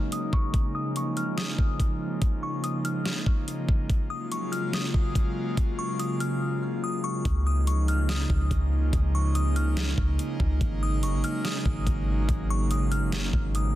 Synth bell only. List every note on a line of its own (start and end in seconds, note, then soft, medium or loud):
0.12 0.32 D#6 medium
0.33 0.53 C#6 medium
0.75 0.95 D#6 medium
0.97 1.16 C#6 medium
1.17 1.37 F6 medium
1.37 1.77 D#6 medium
2.43 2.63 C#6 medium
2.64 2.84 D#6 medium
2.85 3.05 F6 medium
4.10 4.30 D#6 medium
4.32 4.52 C#6 medium
4.52 4.72 F6 medium
4.74 5.13 D#6 medium
5.79 5.98 C#6 medium
5.99 6.19 D#6 medium
6.20 6.40 F6 medium
6.84 7.03 D#6 medium
7.04 7.24 C#6 medium
7.47 7.66 D#6 medium
7.67 7.87 C#6 medium
7.89 8.08 F6 medium
8.10 8.49 D#6 medium
9.15 9.34 C#6 medium
9.35 9.55 D#6 medium
9.56 9.76 F6 medium
10.83 11.02 D#6 medium
11.03 11.23 C#6 medium
11.24 11.44 F6 medium
11.45 11.84 D#6 medium
12.50 12.70 C#6 medium
12.71 12.91 D#6 medium
12.92 13.12 F6 medium
13.55 13.75 D#6 medium